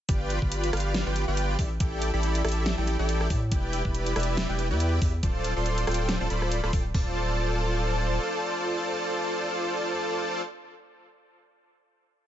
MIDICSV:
0, 0, Header, 1, 4, 480
1, 0, Start_track
1, 0, Tempo, 428571
1, 97, Time_signature, 4, 2, 24, 8
1, 13742, End_track
2, 0, Start_track
2, 0, Title_t, "Supersaw synth"
2, 0, Program_c, 0, 81
2, 98, Note_on_c, 0, 65, 98
2, 98, Note_on_c, 0, 79, 107
2, 99, Note_on_c, 0, 67, 90
2, 99, Note_on_c, 0, 71, 86
2, 99, Note_on_c, 0, 74, 86
2, 439, Note_off_c, 0, 79, 0
2, 440, Note_off_c, 0, 65, 0
2, 440, Note_off_c, 0, 67, 0
2, 440, Note_off_c, 0, 71, 0
2, 440, Note_off_c, 0, 74, 0
2, 472, Note_on_c, 0, 67, 72
2, 472, Note_on_c, 0, 71, 74
2, 472, Note_on_c, 0, 74, 75
2, 472, Note_on_c, 0, 83, 87
2, 792, Note_off_c, 0, 71, 0
2, 792, Note_off_c, 0, 74, 0
2, 793, Note_off_c, 0, 67, 0
2, 793, Note_off_c, 0, 83, 0
2, 818, Note_on_c, 0, 65, 90
2, 818, Note_on_c, 0, 71, 80
2, 818, Note_on_c, 0, 77, 98
2, 819, Note_on_c, 0, 67, 83
2, 819, Note_on_c, 0, 74, 81
2, 1159, Note_off_c, 0, 71, 0
2, 1160, Note_off_c, 0, 65, 0
2, 1160, Note_off_c, 0, 67, 0
2, 1160, Note_off_c, 0, 74, 0
2, 1160, Note_off_c, 0, 77, 0
2, 1192, Note_on_c, 0, 65, 86
2, 1192, Note_on_c, 0, 67, 82
2, 1192, Note_on_c, 0, 71, 81
2, 1192, Note_on_c, 0, 74, 80
2, 1192, Note_on_c, 0, 79, 100
2, 1400, Note_off_c, 0, 65, 0
2, 1400, Note_off_c, 0, 67, 0
2, 1400, Note_off_c, 0, 71, 0
2, 1400, Note_off_c, 0, 74, 0
2, 1400, Note_off_c, 0, 79, 0
2, 1431, Note_on_c, 0, 65, 91
2, 1431, Note_on_c, 0, 71, 86
2, 1431, Note_on_c, 0, 74, 83
2, 1432, Note_on_c, 0, 67, 83
2, 1432, Note_on_c, 0, 79, 101
2, 1752, Note_off_c, 0, 65, 0
2, 1752, Note_off_c, 0, 67, 0
2, 1752, Note_off_c, 0, 71, 0
2, 1752, Note_off_c, 0, 74, 0
2, 1752, Note_off_c, 0, 79, 0
2, 1778, Note_on_c, 0, 67, 85
2, 1779, Note_on_c, 0, 64, 94
2, 1779, Note_on_c, 0, 69, 83
2, 1779, Note_on_c, 0, 74, 83
2, 1779, Note_on_c, 0, 76, 98
2, 1889, Note_off_c, 0, 67, 0
2, 1890, Note_off_c, 0, 64, 0
2, 1890, Note_off_c, 0, 69, 0
2, 1890, Note_off_c, 0, 74, 0
2, 1890, Note_off_c, 0, 76, 0
2, 2019, Note_on_c, 0, 64, 97
2, 2020, Note_on_c, 0, 67, 89
2, 2020, Note_on_c, 0, 69, 87
2, 2020, Note_on_c, 0, 74, 88
2, 2020, Note_on_c, 0, 79, 107
2, 2360, Note_off_c, 0, 64, 0
2, 2360, Note_off_c, 0, 67, 0
2, 2360, Note_off_c, 0, 69, 0
2, 2361, Note_off_c, 0, 74, 0
2, 2361, Note_off_c, 0, 79, 0
2, 2392, Note_on_c, 0, 64, 82
2, 2392, Note_on_c, 0, 67, 75
2, 2392, Note_on_c, 0, 69, 77
2, 2392, Note_on_c, 0, 74, 76
2, 2392, Note_on_c, 0, 83, 89
2, 2713, Note_off_c, 0, 64, 0
2, 2713, Note_off_c, 0, 67, 0
2, 2713, Note_off_c, 0, 69, 0
2, 2713, Note_off_c, 0, 74, 0
2, 2713, Note_off_c, 0, 83, 0
2, 2738, Note_on_c, 0, 67, 82
2, 2738, Note_on_c, 0, 74, 84
2, 2739, Note_on_c, 0, 64, 90
2, 2739, Note_on_c, 0, 69, 82
2, 2739, Note_on_c, 0, 76, 101
2, 3080, Note_off_c, 0, 64, 0
2, 3080, Note_off_c, 0, 67, 0
2, 3080, Note_off_c, 0, 69, 0
2, 3080, Note_off_c, 0, 74, 0
2, 3080, Note_off_c, 0, 76, 0
2, 3112, Note_on_c, 0, 64, 90
2, 3112, Note_on_c, 0, 67, 81
2, 3113, Note_on_c, 0, 69, 81
2, 3113, Note_on_c, 0, 74, 81
2, 3113, Note_on_c, 0, 79, 94
2, 3320, Note_off_c, 0, 64, 0
2, 3320, Note_off_c, 0, 67, 0
2, 3320, Note_off_c, 0, 69, 0
2, 3320, Note_off_c, 0, 74, 0
2, 3320, Note_off_c, 0, 79, 0
2, 3351, Note_on_c, 0, 64, 93
2, 3351, Note_on_c, 0, 67, 84
2, 3351, Note_on_c, 0, 74, 86
2, 3352, Note_on_c, 0, 69, 88
2, 3352, Note_on_c, 0, 79, 103
2, 3672, Note_off_c, 0, 64, 0
2, 3672, Note_off_c, 0, 67, 0
2, 3672, Note_off_c, 0, 74, 0
2, 3673, Note_off_c, 0, 69, 0
2, 3673, Note_off_c, 0, 79, 0
2, 3698, Note_on_c, 0, 64, 94
2, 3698, Note_on_c, 0, 67, 80
2, 3698, Note_on_c, 0, 69, 81
2, 3698, Note_on_c, 0, 76, 104
2, 3809, Note_off_c, 0, 64, 0
2, 3809, Note_off_c, 0, 67, 0
2, 3809, Note_off_c, 0, 69, 0
2, 3809, Note_off_c, 0, 76, 0
2, 3940, Note_on_c, 0, 64, 101
2, 3940, Note_on_c, 0, 67, 91
2, 3940, Note_on_c, 0, 71, 88
2, 3940, Note_on_c, 0, 74, 90
2, 3940, Note_on_c, 0, 79, 110
2, 4280, Note_off_c, 0, 64, 0
2, 4280, Note_off_c, 0, 67, 0
2, 4280, Note_off_c, 0, 71, 0
2, 4280, Note_off_c, 0, 79, 0
2, 4281, Note_off_c, 0, 74, 0
2, 4311, Note_on_c, 0, 71, 74
2, 4311, Note_on_c, 0, 74, 75
2, 4312, Note_on_c, 0, 64, 81
2, 4312, Note_on_c, 0, 67, 77
2, 4312, Note_on_c, 0, 83, 90
2, 4632, Note_off_c, 0, 64, 0
2, 4632, Note_off_c, 0, 71, 0
2, 4632, Note_off_c, 0, 74, 0
2, 4632, Note_off_c, 0, 83, 0
2, 4633, Note_off_c, 0, 67, 0
2, 4658, Note_on_c, 0, 64, 89
2, 4659, Note_on_c, 0, 67, 82
2, 4659, Note_on_c, 0, 71, 83
2, 4659, Note_on_c, 0, 74, 81
2, 4659, Note_on_c, 0, 76, 98
2, 5000, Note_off_c, 0, 64, 0
2, 5000, Note_off_c, 0, 67, 0
2, 5000, Note_off_c, 0, 71, 0
2, 5000, Note_off_c, 0, 74, 0
2, 5000, Note_off_c, 0, 76, 0
2, 5031, Note_on_c, 0, 64, 89
2, 5031, Note_on_c, 0, 74, 80
2, 5031, Note_on_c, 0, 79, 99
2, 5032, Note_on_c, 0, 67, 82
2, 5032, Note_on_c, 0, 71, 82
2, 5239, Note_off_c, 0, 64, 0
2, 5239, Note_off_c, 0, 71, 0
2, 5239, Note_off_c, 0, 74, 0
2, 5239, Note_off_c, 0, 79, 0
2, 5240, Note_off_c, 0, 67, 0
2, 5270, Note_on_c, 0, 64, 94
2, 5271, Note_on_c, 0, 67, 85
2, 5271, Note_on_c, 0, 71, 84
2, 5271, Note_on_c, 0, 74, 88
2, 5271, Note_on_c, 0, 79, 103
2, 5592, Note_off_c, 0, 64, 0
2, 5592, Note_off_c, 0, 67, 0
2, 5592, Note_off_c, 0, 71, 0
2, 5592, Note_off_c, 0, 74, 0
2, 5592, Note_off_c, 0, 79, 0
2, 5619, Note_on_c, 0, 67, 81
2, 5619, Note_on_c, 0, 71, 83
2, 5730, Note_off_c, 0, 67, 0
2, 5730, Note_off_c, 0, 71, 0
2, 5859, Note_on_c, 0, 65, 96
2, 5859, Note_on_c, 0, 69, 89
2, 5859, Note_on_c, 0, 72, 87
2, 5859, Note_on_c, 0, 74, 86
2, 5859, Note_on_c, 0, 81, 108
2, 6200, Note_off_c, 0, 65, 0
2, 6200, Note_off_c, 0, 69, 0
2, 6200, Note_off_c, 0, 72, 0
2, 6200, Note_off_c, 0, 74, 0
2, 6200, Note_off_c, 0, 81, 0
2, 6232, Note_on_c, 0, 84, 93
2, 6233, Note_on_c, 0, 65, 83
2, 6233, Note_on_c, 0, 69, 75
2, 6233, Note_on_c, 0, 72, 72
2, 6233, Note_on_c, 0, 74, 75
2, 6553, Note_off_c, 0, 65, 0
2, 6553, Note_off_c, 0, 69, 0
2, 6553, Note_off_c, 0, 72, 0
2, 6553, Note_off_c, 0, 74, 0
2, 6553, Note_off_c, 0, 84, 0
2, 6578, Note_on_c, 0, 65, 90
2, 6578, Note_on_c, 0, 69, 82
2, 6578, Note_on_c, 0, 72, 85
2, 6578, Note_on_c, 0, 79, 100
2, 6579, Note_on_c, 0, 74, 82
2, 6919, Note_off_c, 0, 65, 0
2, 6919, Note_off_c, 0, 69, 0
2, 6919, Note_off_c, 0, 79, 0
2, 6920, Note_off_c, 0, 72, 0
2, 6920, Note_off_c, 0, 74, 0
2, 6953, Note_on_c, 0, 65, 90
2, 6953, Note_on_c, 0, 69, 84
2, 6953, Note_on_c, 0, 72, 83
2, 6953, Note_on_c, 0, 74, 83
2, 6953, Note_on_c, 0, 81, 101
2, 7037, Note_off_c, 0, 65, 0
2, 7037, Note_off_c, 0, 69, 0
2, 7037, Note_off_c, 0, 72, 0
2, 7037, Note_off_c, 0, 74, 0
2, 7037, Note_off_c, 0, 81, 0
2, 7058, Note_on_c, 0, 65, 77
2, 7058, Note_on_c, 0, 69, 70
2, 7058, Note_on_c, 0, 74, 74
2, 7059, Note_on_c, 0, 72, 71
2, 7059, Note_on_c, 0, 83, 84
2, 7400, Note_off_c, 0, 65, 0
2, 7400, Note_off_c, 0, 69, 0
2, 7400, Note_off_c, 0, 72, 0
2, 7400, Note_off_c, 0, 74, 0
2, 7400, Note_off_c, 0, 83, 0
2, 7431, Note_on_c, 0, 65, 76
2, 7432, Note_on_c, 0, 69, 67
2, 7432, Note_on_c, 0, 72, 67
2, 7432, Note_on_c, 0, 74, 68
2, 7432, Note_on_c, 0, 83, 82
2, 7512, Note_off_c, 0, 65, 0
2, 7512, Note_off_c, 0, 74, 0
2, 7512, Note_off_c, 0, 83, 0
2, 7513, Note_off_c, 0, 69, 0
2, 7513, Note_off_c, 0, 72, 0
2, 7537, Note_on_c, 0, 79, 100
2, 7538, Note_on_c, 0, 65, 90
2, 7538, Note_on_c, 0, 74, 80
2, 7649, Note_off_c, 0, 65, 0
2, 7649, Note_off_c, 0, 74, 0
2, 7649, Note_off_c, 0, 79, 0
2, 7777, Note_on_c, 0, 81, 102
2, 7778, Note_on_c, 0, 65, 88
2, 7778, Note_on_c, 0, 69, 81
2, 7778, Note_on_c, 0, 72, 83
2, 7778, Note_on_c, 0, 74, 83
2, 11665, Note_off_c, 0, 81, 0
2, 11666, Note_off_c, 0, 65, 0
2, 11666, Note_off_c, 0, 69, 0
2, 11666, Note_off_c, 0, 72, 0
2, 11666, Note_off_c, 0, 74, 0
2, 13742, End_track
3, 0, Start_track
3, 0, Title_t, "Sub bass"
3, 0, Program_c, 1, 38
3, 98, Note_on_c, 1, 31, 101
3, 445, Note_off_c, 1, 31, 0
3, 472, Note_on_c, 1, 31, 94
3, 797, Note_off_c, 1, 31, 0
3, 817, Note_on_c, 1, 31, 96
3, 1164, Note_off_c, 1, 31, 0
3, 1191, Note_on_c, 1, 31, 94
3, 1404, Note_off_c, 1, 31, 0
3, 1430, Note_on_c, 1, 31, 100
3, 1756, Note_off_c, 1, 31, 0
3, 1779, Note_on_c, 1, 33, 99
3, 1997, Note_off_c, 1, 33, 0
3, 2018, Note_on_c, 1, 33, 95
3, 2365, Note_off_c, 1, 33, 0
3, 2391, Note_on_c, 1, 33, 96
3, 2716, Note_off_c, 1, 33, 0
3, 2737, Note_on_c, 1, 33, 98
3, 3084, Note_off_c, 1, 33, 0
3, 3112, Note_on_c, 1, 33, 97
3, 3325, Note_off_c, 1, 33, 0
3, 3351, Note_on_c, 1, 33, 99
3, 3676, Note_off_c, 1, 33, 0
3, 3698, Note_on_c, 1, 45, 94
3, 3938, Note_on_c, 1, 28, 97
3, 3955, Note_off_c, 1, 45, 0
3, 4285, Note_off_c, 1, 28, 0
3, 4311, Note_on_c, 1, 28, 100
3, 4636, Note_off_c, 1, 28, 0
3, 4656, Note_on_c, 1, 28, 96
3, 5004, Note_off_c, 1, 28, 0
3, 5029, Note_on_c, 1, 28, 96
3, 5269, Note_on_c, 1, 40, 101
3, 5286, Note_off_c, 1, 28, 0
3, 5596, Note_off_c, 1, 40, 0
3, 5618, Note_on_c, 1, 40, 97
3, 5837, Note_off_c, 1, 40, 0
3, 5859, Note_on_c, 1, 26, 96
3, 6205, Note_off_c, 1, 26, 0
3, 6231, Note_on_c, 1, 26, 101
3, 6556, Note_off_c, 1, 26, 0
3, 6578, Note_on_c, 1, 26, 99
3, 6925, Note_off_c, 1, 26, 0
3, 6952, Note_on_c, 1, 26, 95
3, 7037, Note_off_c, 1, 26, 0
3, 7059, Note_on_c, 1, 26, 104
3, 7405, Note_off_c, 1, 26, 0
3, 7431, Note_on_c, 1, 26, 102
3, 7517, Note_off_c, 1, 26, 0
3, 7538, Note_on_c, 1, 26, 101
3, 7757, Note_off_c, 1, 26, 0
3, 7778, Note_on_c, 1, 26, 98
3, 9173, Note_off_c, 1, 26, 0
3, 13742, End_track
4, 0, Start_track
4, 0, Title_t, "Drums"
4, 98, Note_on_c, 9, 36, 118
4, 98, Note_on_c, 9, 42, 85
4, 210, Note_off_c, 9, 36, 0
4, 210, Note_off_c, 9, 42, 0
4, 338, Note_on_c, 9, 42, 72
4, 450, Note_off_c, 9, 42, 0
4, 472, Note_on_c, 9, 36, 61
4, 578, Note_on_c, 9, 42, 82
4, 584, Note_off_c, 9, 36, 0
4, 690, Note_off_c, 9, 42, 0
4, 712, Note_on_c, 9, 42, 62
4, 819, Note_off_c, 9, 42, 0
4, 819, Note_on_c, 9, 37, 78
4, 819, Note_on_c, 9, 42, 50
4, 863, Note_off_c, 9, 42, 0
4, 863, Note_on_c, 9, 42, 67
4, 898, Note_off_c, 9, 42, 0
4, 898, Note_on_c, 9, 42, 82
4, 931, Note_off_c, 9, 37, 0
4, 1010, Note_off_c, 9, 42, 0
4, 1058, Note_on_c, 9, 38, 122
4, 1058, Note_on_c, 9, 42, 86
4, 1170, Note_off_c, 9, 38, 0
4, 1170, Note_off_c, 9, 42, 0
4, 1297, Note_on_c, 9, 42, 68
4, 1409, Note_off_c, 9, 42, 0
4, 1537, Note_on_c, 9, 42, 85
4, 1649, Note_off_c, 9, 42, 0
4, 1778, Note_on_c, 9, 46, 65
4, 1779, Note_on_c, 9, 36, 104
4, 1890, Note_off_c, 9, 46, 0
4, 1891, Note_off_c, 9, 36, 0
4, 2018, Note_on_c, 9, 42, 84
4, 2019, Note_on_c, 9, 36, 124
4, 2130, Note_off_c, 9, 42, 0
4, 2131, Note_off_c, 9, 36, 0
4, 2259, Note_on_c, 9, 42, 73
4, 2371, Note_off_c, 9, 42, 0
4, 2499, Note_on_c, 9, 42, 78
4, 2611, Note_off_c, 9, 42, 0
4, 2633, Note_on_c, 9, 42, 66
4, 2739, Note_off_c, 9, 42, 0
4, 2739, Note_on_c, 9, 37, 78
4, 2739, Note_on_c, 9, 42, 49
4, 2784, Note_off_c, 9, 42, 0
4, 2784, Note_on_c, 9, 42, 66
4, 2819, Note_off_c, 9, 42, 0
4, 2819, Note_on_c, 9, 42, 83
4, 2851, Note_off_c, 9, 37, 0
4, 2931, Note_off_c, 9, 42, 0
4, 2979, Note_on_c, 9, 38, 123
4, 2979, Note_on_c, 9, 42, 86
4, 3091, Note_off_c, 9, 38, 0
4, 3091, Note_off_c, 9, 42, 0
4, 3219, Note_on_c, 9, 42, 71
4, 3331, Note_off_c, 9, 42, 0
4, 3458, Note_on_c, 9, 42, 85
4, 3570, Note_off_c, 9, 42, 0
4, 3593, Note_on_c, 9, 37, 60
4, 3698, Note_on_c, 9, 36, 111
4, 3698, Note_on_c, 9, 46, 65
4, 3705, Note_off_c, 9, 37, 0
4, 3810, Note_off_c, 9, 36, 0
4, 3810, Note_off_c, 9, 46, 0
4, 3938, Note_on_c, 9, 36, 124
4, 3938, Note_on_c, 9, 42, 80
4, 4050, Note_off_c, 9, 36, 0
4, 4050, Note_off_c, 9, 42, 0
4, 4179, Note_on_c, 9, 42, 71
4, 4291, Note_off_c, 9, 42, 0
4, 4312, Note_on_c, 9, 36, 65
4, 4419, Note_on_c, 9, 42, 81
4, 4424, Note_off_c, 9, 36, 0
4, 4531, Note_off_c, 9, 42, 0
4, 4553, Note_on_c, 9, 42, 62
4, 4659, Note_off_c, 9, 42, 0
4, 4659, Note_on_c, 9, 37, 74
4, 4659, Note_on_c, 9, 42, 51
4, 4703, Note_off_c, 9, 42, 0
4, 4703, Note_on_c, 9, 42, 64
4, 4739, Note_off_c, 9, 42, 0
4, 4739, Note_on_c, 9, 42, 78
4, 4771, Note_off_c, 9, 37, 0
4, 4851, Note_off_c, 9, 42, 0
4, 4898, Note_on_c, 9, 38, 127
4, 4898, Note_on_c, 9, 42, 84
4, 5010, Note_off_c, 9, 38, 0
4, 5010, Note_off_c, 9, 42, 0
4, 5138, Note_on_c, 9, 42, 71
4, 5250, Note_off_c, 9, 42, 0
4, 5378, Note_on_c, 9, 42, 82
4, 5490, Note_off_c, 9, 42, 0
4, 5618, Note_on_c, 9, 36, 115
4, 5619, Note_on_c, 9, 46, 61
4, 5730, Note_off_c, 9, 36, 0
4, 5731, Note_off_c, 9, 46, 0
4, 5858, Note_on_c, 9, 36, 127
4, 5858, Note_on_c, 9, 42, 80
4, 5970, Note_off_c, 9, 36, 0
4, 5970, Note_off_c, 9, 42, 0
4, 6098, Note_on_c, 9, 42, 66
4, 6210, Note_off_c, 9, 42, 0
4, 6337, Note_on_c, 9, 42, 75
4, 6449, Note_off_c, 9, 42, 0
4, 6471, Note_on_c, 9, 42, 61
4, 6578, Note_off_c, 9, 42, 0
4, 6578, Note_on_c, 9, 37, 80
4, 6578, Note_on_c, 9, 42, 47
4, 6623, Note_off_c, 9, 42, 0
4, 6623, Note_on_c, 9, 42, 64
4, 6657, Note_off_c, 9, 42, 0
4, 6657, Note_on_c, 9, 42, 80
4, 6690, Note_off_c, 9, 37, 0
4, 6769, Note_off_c, 9, 42, 0
4, 6818, Note_on_c, 9, 38, 121
4, 6818, Note_on_c, 9, 42, 80
4, 6930, Note_off_c, 9, 38, 0
4, 6930, Note_off_c, 9, 42, 0
4, 7058, Note_on_c, 9, 42, 68
4, 7170, Note_off_c, 9, 42, 0
4, 7191, Note_on_c, 9, 37, 60
4, 7298, Note_on_c, 9, 42, 79
4, 7303, Note_off_c, 9, 37, 0
4, 7410, Note_off_c, 9, 42, 0
4, 7432, Note_on_c, 9, 37, 59
4, 7538, Note_on_c, 9, 36, 112
4, 7538, Note_on_c, 9, 46, 58
4, 7544, Note_off_c, 9, 37, 0
4, 7650, Note_off_c, 9, 36, 0
4, 7650, Note_off_c, 9, 46, 0
4, 7778, Note_on_c, 9, 43, 104
4, 7778, Note_on_c, 9, 46, 88
4, 7779, Note_on_c, 9, 36, 106
4, 7890, Note_off_c, 9, 43, 0
4, 7890, Note_off_c, 9, 46, 0
4, 7891, Note_off_c, 9, 36, 0
4, 13742, End_track
0, 0, End_of_file